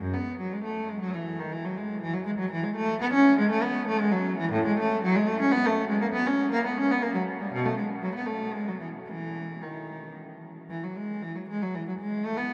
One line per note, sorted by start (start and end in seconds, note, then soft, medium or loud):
0.01 0.14 F#2 medium
0.14 0.39 B3 medium
0.39 0.52 F#3 medium
0.53 0.65 G#3 medium
0.64 0.89 A3 medium
0.89 1.02 G#3 medium
1.01 1.14 F#3 loud
1.14 1.39 E3 medium
1.39 1.52 D#3 medium
1.52 1.65 E3 medium
1.64 1.77 F#3 medium
1.77 2.02 G#3 medium
2.01 2.14 E3 loud
2.13 2.26 F#3 medium
2.25 2.31 G#3 loud
2.38 2.51 F#3 loud
2.51 2.63 E3 loud
2.63 2.76 G#3 loud
2.76 3.00 A3 loud
3.01 3.13 B3 loud
3.13 3.37 C#4 loud
3.38 3.50 G#3 loud
3.51 3.63 A3 loud
3.63 3.87 B3 loud
3.87 3.99 A3 loud
3.99 4.12 G#3 loud
4.11 4.37 F#3 loud
4.38 4.51 E3 loud
4.52 4.64 A2 loud
4.66 4.78 G#3 loud
4.79 5.03 A3 loud
5.03 5.15 F#3 loud
5.15 5.27 G#3 loud
5.28 5.40 A3 loud
5.40 5.52 C#4 loud
5.52 5.64 B3 loud
5.66 5.89 A3 loud
5.89 6.01 G#3 loud
6.01 6.06 A#3 loud
6.13 6.25 B3 loud
6.26 6.51 C#4 loud
6.52 6.64 A#3 loud
6.66 6.77 B3 medium
6.77 6.89 C#4 loud
6.91 7.02 B3 loud
7.02 7.14 A#3 loud
7.14 7.22 F#3 loud
7.40 7.52 G3 medium
7.52 7.64 B2 loud
7.65 7.77 A3 loud
7.78 7.86 G#3 medium
8.02 8.15 F#3 medium
8.15 8.28 B3 medium
8.26 8.54 A3 medium
8.53 8.67 G#3 medium
8.68 8.81 F#3 medium
8.80 8.88 E3 medium
9.07 9.60 E3 medium
9.62 10.15 D#3 medium
10.70 10.82 E3 medium
10.83 10.96 F#3 medium
10.96 11.22 G#3 medium
11.22 11.35 E3 medium
11.35 11.48 F#3 medium
11.48 11.60 G#3 medium
11.62 11.74 F#3 medium
11.74 11.86 E3 medium
11.88 11.93 F#3 medium
11.99 12.24 G#3 medium
12.26 12.38 A3 loud
12.37 12.54 B3 loud